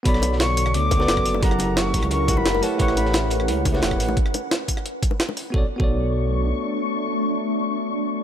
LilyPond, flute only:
\new Staff \with { instrumentName = "Flute" } { \time 4/4 \key b \minor \tempo 4 = 175 b''4 cis'''4 d'''2 | ais''4 cis'''4 cis'''8. b''8. a''8 | cis'''8 b''4 r2 r8 | r1 |
r1 | r1 | }